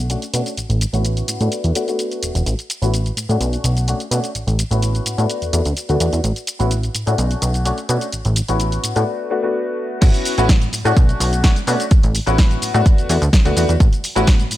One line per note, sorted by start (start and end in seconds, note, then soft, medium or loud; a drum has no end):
0.00 0.16 B1 medium
0.09 0.20 A3 medium
0.09 0.20 C#4 medium
0.09 0.20 D4 medium
0.09 0.20 F#4 medium
0.09 closed hi-hat medium
0.09 shaker soft
0.22 closed hi-hat soft
0.22 shaker soft
0.33 0.42 B2 medium
0.33 0.49 A3 medium
0.33 0.49 C#4 medium
0.33 0.49 D4 medium
0.33 0.49 F#4 medium
0.33 closed hi-hat medium
0.33 shaker medium
0.46 closed hi-hat soft
0.46 shaker soft
0.57 0.67 A1 soft
0.57 closed hi-hat medium
0.57 shaker soft
0.70 0.86 A1 loud
0.70 closed hi-hat soft
0.70 shaker soft
0.81 closed hi-hat medium
0.81 shaker medium
0.93 1.23 A1 medium
0.93 1.37 B3 medium
0.93 1.37 C#4 medium
0.93 1.38 E4 medium
0.93 1.38 F#4 medium
0.93 closed hi-hat soft
0.93 shaker soft
1.05 closed hi-hat medium
1.05 shaker soft
1.17 closed hi-hat soft
1.17 shaker soft
1.28 1.38 A2 soft
1.28 closed hi-hat medium
1.28 shaker medium
1.40 1.48 A2 medium
1.40 1.73 A3 medium
1.40 1.73 B3 medium
1.40 1.73 D4 medium
1.40 1.73 F#4 medium
1.40 closed hi-hat soft
1.40 shaker soft
1.52 closed hi-hat medium
1.52 shaker soft
1.64 1.72 E2 medium
1.64 closed hi-hat soft
1.64 shaker soft
1.75 1.84 A3 medium
1.75 1.85 B3 medium
1.75 1.85 D4 medium
1.75 1.85 F#4 medium
1.75 closed hi-hat medium
1.75 shaker medium
1.87 2.44 A3 medium
1.87 2.45 B3 medium
1.87 2.45 D4 medium
1.87 2.45 F#4 medium
1.87 closed hi-hat soft
1.87 shaker soft
1.99 closed hi-hat medium
1.99 shaker soft
2.12 closed hi-hat soft
2.12 shaker soft
2.23 2.33 E1 soft
2.23 closed hi-hat medium
2.23 shaker medium
2.35 2.43 E1 medium
2.35 closed hi-hat soft
2.35 shaker soft
2.46 2.55 A1 medium
2.46 closed hi-hat medium
2.46 shaker soft
2.59 closed hi-hat soft
2.59 shaker soft
2.70 closed hi-hat medium
2.70 shaker medium
2.82 3.11 A1 medium
2.82 2.91 B3 medium
2.82 2.91 C#4 medium
2.82 2.91 E4 medium
2.82 2.91 F#4 medium
2.82 closed hi-hat soft
2.82 shaker soft
2.94 closed hi-hat medium
2.94 shaker soft
3.06 closed hi-hat soft
3.06 shaker soft
3.17 3.27 A2 soft
3.17 closed hi-hat medium
3.17 shaker medium
3.29 3.37 A2 medium
3.29 3.85 A3 medium
3.29 3.85 C#4 medium
3.29 3.85 D4 medium
3.29 3.86 F#4 medium
3.29 closed hi-hat soft
3.29 shaker soft
3.41 3.57 B1 loud
3.41 closed hi-hat medium
3.41 shaker soft
3.53 closed hi-hat soft
3.53 shaker soft
3.64 3.94 B1 medium
3.64 closed hi-hat medium
3.64 shaker medium
3.77 closed hi-hat soft
3.77 shaker soft
3.88 3.98 A3 medium
3.88 3.98 C#4 medium
3.88 3.98 D4 medium
3.88 3.98 F#4 medium
3.88 closed hi-hat medium
3.88 shaker soft
4.00 closed hi-hat soft
4.00 shaker soft
4.11 4.20 B2 medium
4.11 4.27 A3 medium
4.11 4.27 C#4 medium
4.11 4.27 D4 medium
4.11 4.27 F#4 medium
4.11 closed hi-hat medium
4.11 shaker medium
4.24 closed hi-hat soft
4.24 shaker soft
4.35 4.45 A1 soft
4.35 closed hi-hat medium
4.35 shaker soft
4.47 4.64 A1 medium
4.47 closed hi-hat soft
4.47 shaker soft
4.59 closed hi-hat medium
4.59 shaker medium
4.71 5.00 A1 medium
4.71 5.15 B3 medium
4.71 5.15 C#4 medium
4.71 5.15 E4 medium
4.71 5.16 F#4 medium
4.71 closed hi-hat soft
4.71 shaker soft
4.82 closed hi-hat medium
4.82 shaker soft
4.95 closed hi-hat soft
4.95 shaker soft
5.06 5.16 A2 soft
5.06 closed hi-hat medium
5.06 shaker medium
5.18 5.26 A2 medium
5.18 5.50 A3 medium
5.18 5.50 B3 medium
5.18 5.51 D4 medium
5.18 5.51 F#4 medium
5.18 closed hi-hat soft
5.18 shaker soft
5.30 closed hi-hat medium
5.30 shaker soft
5.42 5.51 E2 soft
5.42 closed hi-hat soft
5.42 shaker soft
5.52 5.62 E2 loud
5.52 5.63 A3 medium
5.52 5.63 B3 medium
5.52 5.63 D4 medium
5.52 5.63 F#4 medium
5.52 closed hi-hat medium
5.52 shaker medium
5.65 5.74 D2 medium
5.65 closed hi-hat soft
5.65 shaker soft
5.77 closed hi-hat medium
5.77 shaker soft
5.89 5.97 D2 medium
5.89 5.98 A3 medium
5.89 5.98 B3 medium
5.89 5.98 D4 medium
5.89 5.98 F#4 medium
5.89 closed hi-hat soft
5.89 shaker soft
6.00 6.09 E2 medium
6.00 6.16 A3 medium
6.00 6.16 B3 medium
6.00 6.16 D4 medium
6.00 6.16 F#4 medium
6.00 closed hi-hat medium
6.00 shaker medium
6.13 6.21 E2 medium
6.13 closed hi-hat soft
6.13 shaker soft
6.24 6.33 A1 medium
6.24 closed hi-hat medium
6.24 shaker soft
6.36 closed hi-hat soft
6.36 shaker soft
6.47 closed hi-hat medium
6.47 shaker medium
6.59 6.89 A1 medium
6.59 6.69 B3 medium
6.59 6.69 C#4 medium
6.59 6.69 E4 medium
6.59 6.69 F#4 medium
6.59 closed hi-hat soft
6.59 shaker soft
6.71 closed hi-hat medium
6.71 shaker soft
6.83 closed hi-hat soft
6.83 shaker soft
6.95 7.05 A2 soft
6.95 closed hi-hat medium
6.95 shaker medium
7.06 7.15 A2 medium
7.06 7.63 A3 medium
7.06 7.63 C#4 medium
7.06 7.63 D4 medium
7.06 7.63 F#4 medium
7.06 closed hi-hat soft
7.06 shaker soft
7.18 7.35 B1 loud
7.18 closed hi-hat medium
7.18 shaker soft
7.31 closed hi-hat soft
7.31 shaker soft
7.42 7.72 B1 medium
7.42 closed hi-hat medium
7.42 shaker medium
7.54 closed hi-hat soft
7.54 shaker soft
7.65 7.75 A3 medium
7.65 7.75 C#4 medium
7.65 7.76 D4 medium
7.65 7.76 F#4 medium
7.65 closed hi-hat medium
7.65 shaker soft
7.78 closed hi-hat soft
7.78 shaker soft
7.89 7.98 B2 medium
7.89 8.05 A3 medium
7.89 8.05 C#4 medium
7.89 8.05 D4 medium
7.89 8.05 F#4 medium
7.89 closed hi-hat medium
7.89 shaker medium
8.01 closed hi-hat soft
8.01 shaker soft
8.12 8.23 A1 soft
8.12 closed hi-hat medium
8.12 shaker soft
8.25 8.42 A1 medium
8.25 closed hi-hat soft
8.25 shaker soft
8.36 closed hi-hat medium
8.36 shaker medium
8.48 8.79 A1 medium
8.48 8.93 B3 medium
8.48 8.93 C#4 medium
8.48 8.93 E4 medium
8.48 8.93 F#4 medium
8.48 closed hi-hat soft
8.48 shaker soft
8.60 closed hi-hat medium
8.60 shaker soft
8.72 closed hi-hat soft
8.72 shaker soft
8.84 8.94 A2 soft
8.84 closed hi-hat medium
8.84 shaker medium
8.95 9.04 A2 medium
8.95 9.28 A3 medium
8.95 9.28 B3 medium
8.95 9.28 D4 medium
8.95 9.28 F#4 medium
8.95 closed hi-hat soft
8.95 shaker soft
9.30 9.40 A3 medium
9.30 9.40 B3 medium
9.30 9.40 D4 medium
9.30 9.40 F#4 medium
9.42 10.00 A3 medium
9.42 10.00 B3 medium
9.42 10.01 D4 medium
9.42 10.01 F#4 medium
10.01 10.11 A1 medium
10.01 10.33 B3 loud
10.01 10.33 C#4 medium
10.01 10.33 E4 medium
10.01 10.33 F#4 loud
10.01 kick loud
10.01 closed hi-hat medium
10.01 crash medium
10.01 shaker soft
10.14 closed hi-hat soft
10.14 shaker soft
10.25 open hi-hat loud
10.25 shaker medium
10.38 10.68 A1 medium
10.38 10.47 B3 medium
10.38 10.47 C#4 medium
10.38 10.47 E4 medium
10.38 10.47 F#4 loud
10.38 closed hi-hat soft
10.38 shaker soft
10.49 kick loud
10.49 snare loud
10.49 closed hi-hat medium
10.49 shaker soft
10.62 closed hi-hat soft
10.62 shaker soft
10.73 10.83 A2 soft
10.73 open hi-hat medium
10.73 shaker medium
10.85 10.93 A2 loud
10.85 11.41 A3 medium
10.85 11.41 C#4 medium
10.85 11.41 D4 medium
10.85 11.42 F#4 loud
10.85 closed hi-hat soft
10.85 shaker soft
10.97 11.14 B1 loud
10.97 kick loud
10.97 closed hi-hat medium
10.97 shaker soft
11.09 closed hi-hat soft
11.09 shaker soft
11.20 11.50 B1 loud
11.20 open hi-hat loud
11.20 shaker medium
11.33 closed hi-hat soft
11.33 shaker soft
11.43 11.53 A3 medium
11.43 11.54 C#4 medium
11.43 11.54 D4 medium
11.43 11.54 F#4 loud
11.43 kick loud
11.43 snare loud
11.43 closed hi-hat medium
11.43 shaker soft
11.56 closed hi-hat soft
11.56 shaker soft
11.67 11.76 B2 medium
11.67 11.83 A3 medium
11.67 11.83 C#4 medium
11.67 11.83 D4 medium
11.67 11.83 F#4 loud
11.67 open hi-hat medium
11.67 shaker medium
11.80 closed hi-hat soft
11.80 shaker soft
11.91 12.01 A1 soft
11.91 kick loud
11.91 closed hi-hat medium
11.91 shaker soft
12.03 12.20 A1 loud
12.03 closed hi-hat soft
12.03 shaker soft
12.15 open hi-hat loud
12.15 shaker medium
12.26 12.57 A1 medium
12.26 12.71 B3 medium
12.26 12.71 C#4 medium
12.26 12.71 E4 medium
12.26 12.71 F#4 medium
12.26 closed hi-hat soft
12.26 shaker soft
12.38 kick loud
12.38 snare loud
12.38 closed hi-hat medium
12.38 shaker soft
12.51 closed hi-hat soft
12.51 shaker soft
12.62 12.72 A2 soft
12.62 open hi-hat loud
12.62 shaker medium
12.74 12.82 A2 loud
12.74 13.06 A3 medium
12.74 13.06 B3 medium
12.74 13.06 D4 medium
12.74 13.07 F#4 medium
12.74 closed hi-hat soft
12.74 shaker soft
12.86 kick loud
12.86 closed hi-hat medium
12.86 shaker soft
12.98 13.07 E2 soft
12.98 closed hi-hat soft
12.98 shaker soft
13.09 13.18 E2 loud
13.09 13.19 A3 medium
13.09 13.19 B3 medium
13.09 13.19 D4 medium
13.09 13.19 F#4 medium
13.09 open hi-hat loud
13.09 shaker medium
13.22 13.30 D2 medium
13.22 closed hi-hat soft
13.22 shaker soft
13.33 kick loud
13.33 snare loud
13.33 closed hi-hat medium
13.33 shaker soft
13.45 13.53 D2 medium
13.45 13.53 A3 medium
13.45 13.54 B3 medium
13.45 13.54 D4 medium
13.45 13.54 F#4 loud
13.45 closed hi-hat soft
13.45 shaker soft
13.56 13.65 E2 medium
13.56 13.72 A3 medium
13.56 13.72 B3 medium
13.56 13.72 D4 medium
13.56 13.72 F#4 medium
13.56 open hi-hat medium
13.56 shaker medium
13.69 13.77 E2 medium
13.69 closed hi-hat soft
13.69 shaker soft
13.80 13.89 A1 loud
13.80 kick loud
13.80 closed hi-hat medium
13.80 shaker soft
13.93 closed hi-hat soft
13.93 shaker soft
14.04 open hi-hat loud
14.04 shaker medium
14.15 14.46 A1 loud
14.15 14.25 B3 medium
14.15 14.25 C#4 medium
14.15 14.25 E4 medium
14.15 14.25 F#4 loud
14.15 closed hi-hat soft
14.15 shaker soft
14.27 kick loud
14.27 snare loud
14.27 closed hi-hat medium
14.27 shaker soft
14.40 closed hi-hat soft
14.40 shaker soft
14.51 14.57 A2 soft
14.51 open hi-hat loud
14.51 shaker medium